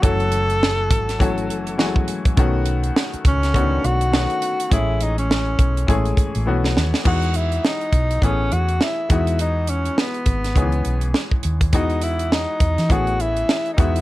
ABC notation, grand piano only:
X:1
M:4/4
L:1/8
Q:"Swing 16ths" 1/4=103
K:E
V:1 name="Grand piano"
[E,F,A,CF]3 z [E,F,A,CF]2 [E,F,G,A,CFg]2 | [D,A,B,CF]3 z [=D,^D,A,B,CF]2 [D,A,B,CF]2 | [E,G,A,CG]3 z [E,G,A,CG]2 [E,A,B,CF]2 | [E,G,B,DF]3 z [E,A,B,CG]3 [E,G,B,DF]- |
[E,G,B,DF]2 z2 [D,E,G,B,CG]3 z | [E,G,B,DF]3 z [E,A,B,CG]3 [E,G,B,DF] |]